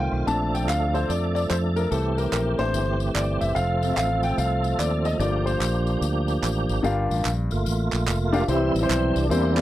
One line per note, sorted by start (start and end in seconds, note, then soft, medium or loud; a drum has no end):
0.00 0.27 D#3 medium
0.00 0.27 A3 medium
0.00 0.27 C4 medium
0.00 0.27 F4 medium
0.00 0.29 G5 medium
0.12 0.25 B1 medium
0.26 0.68 A#1 loud
0.26 1.90 F3 medium
0.26 1.87 A3 medium
0.26 3.52 A3 medium
0.26 1.87 C4 medium
0.26 1.87 D4 medium
0.26 1.90 D4 medium
0.26 1.90 A4 medium
0.26 0.53 A5 loud
0.26 tambourine medium
0.55 0.68 G5 medium
0.55 tambourine medium
0.68 1.03 D2 medium
0.68 0.96 F5 loud
0.68 clap medium
0.68 tambourine medium
0.94 1.10 C5 medium
0.94 tambourine medium
1.09 1.44 F2 medium
1.09 1.33 D5 medium
1.09 tambourine medium
1.35 1.40 D5 loud
1.35 tambourine medium
1.50 1.85 F2 medium
1.50 1.56 C5 medium
1.50 clap medium
1.50 tambourine medium
1.76 1.92 A#4 loud
1.76 tambourine medium
1.91 2.26 C2 loud
1.91 3.54 E3 medium
1.91 5.16 C4 medium
1.91 3.54 G4 medium
1.91 2.16 A4 medium
1.91 tambourine medium
2.18 2.31 A#4 medium
2.18 tambourine medium
2.32 2.55 A#1 medium
2.32 2.60 A#4 medium
2.32 clap medium
2.32 tambourine medium
2.58 2.71 A1 medium
2.58 2.83 A#3 medium
2.58 2.83 D4 soft
2.58 2.83 E4 medium
2.58 2.97 C5 loud
2.58 tambourine soft
2.74 3.08 G1 loud
2.74 tambourine loud
3.00 tambourine medium
3.14 3.37 G1 medium
3.14 3.39 D5 medium
3.14 clap loud
3.14 tambourine medium
3.41 3.54 F#1 medium
3.41 3.54 E5 medium
3.41 tambourine medium
3.55 3.91 F1 loud
3.55 6.80 F3 medium
3.55 5.18 A3 medium
3.55 5.18 A4 medium
3.55 3.94 F5 loud
3.55 tambourine medium
3.81 4.34 A3 medium
3.81 4.35 C4 medium
3.81 4.35 F4 medium
3.81 tambourine medium
3.93 3.96 E5 medium
3.97 4.32 A1 medium
3.97 4.24 F5 loud
3.97 clap medium
3.97 tambourine medium
4.23 4.38 G5 medium
4.23 tambourine medium
4.38 4.73 C2 loud
4.38 4.76 F5 medium
4.38 tambourine medium
4.64 tambourine medium
4.79 5.13 D#2 medium
4.79 5.06 D5 medium
4.79 clap medium
4.79 tambourine medium
5.05 5.20 D#5 medium
5.05 tambourine medium
5.19 5.54 G1 loud
5.19 5.50 A3 medium
5.19 5.50 A#3 medium
5.19 6.83 A#3 medium
5.19 6.83 D4 medium
5.19 5.51 F4 medium
5.19 6.83 G4 medium
5.19 5.47 D5 medium
5.19 tambourine medium
5.46 5.98 C5 medium
5.46 tambourine medium
5.60 5.95 A#1 medium
5.60 clap medium
5.60 tambourine medium
5.87 tambourine soft
6.01 6.37 D2 medium
6.01 tambourine medium
6.28 tambourine medium
6.43 6.65 A1 medium
6.43 clap loud
6.43 tambourine medium
6.69 6.82 G#1 medium
6.69 tambourine medium
6.83 7.06 G1 loud
6.83 7.47 G2 medium
6.83 7.27 D4 medium
6.83 7.28 F4 medium
6.83 7.28 G4 medium
6.83 7.28 A#4 medium
6.83 7.28 F5 medium
6.83 tambourine medium
7.11 7.23 A1 loud
7.11 tambourine medium
7.25 7.48 A#1 medium
7.25 clap medium
7.25 tambourine medium
7.51 7.64 G1 medium
7.51 8.44 A3 medium
7.51 8.44 A#3 medium
7.51 8.44 F4 medium
7.51 tambourine medium
7.66 7.89 A1 loud
7.66 tambourine medium
7.92 8.05 A#1 medium
7.92 clap medium
7.92 tambourine medium
8.07 8.42 F1 medium
8.07 clap loud
8.07 tambourine medium
8.32 8.41 D4 loud
8.32 8.49 D4 loud
8.32 8.41 F4 medium
8.32 8.41 G4 medium
8.32 8.41 A#4 medium
8.32 8.42 F5 loud
8.32 tambourine medium
8.47 8.71 C2 loud
8.47 9.12 C3 medium
8.47 8.82 E3 medium
8.47 8.81 G3 medium
8.47 8.82 C4 loud
8.47 8.69 E4 medium
8.47 8.80 E4 medium
8.47 8.69 G4 medium
8.47 8.70 C5 medium
8.47 tambourine medium
8.75 8.87 A1 medium
8.75 tambourine medium
8.81 9.28 E3 medium
8.81 9.27 G3 medium
8.81 9.17 C4 loud
8.81 9.20 E4 medium
8.81 9.21 G4 medium
8.81 9.21 C5 medium
8.89 9.12 B1 loud
8.89 clap loud
8.89 tambourine loud
9.16 9.28 C2 medium
9.16 9.30 D4 loud
9.16 tambourine medium
9.29 9.61 E2 loud
9.29 9.61 E3 medium
9.29 9.61 G3 medium
9.29 9.51 A#3 medium
9.29 9.61 A#3 medium
9.29 9.51 C4 medium
9.29 9.61 C4 loud
9.29 9.61 D4 medium
9.29 9.51 E4 medium
9.29 9.61 E4 medium
9.29 9.52 G4 medium
9.29 9.52 C5 medium
9.29 tambourine medium
9.56 9.61 A#3 medium
9.56 9.61 C4 medium
9.56 9.61 E4 medium
9.56 9.61 G4 medium
9.56 9.61 D5 medium
9.56 clap medium
9.56 tambourine medium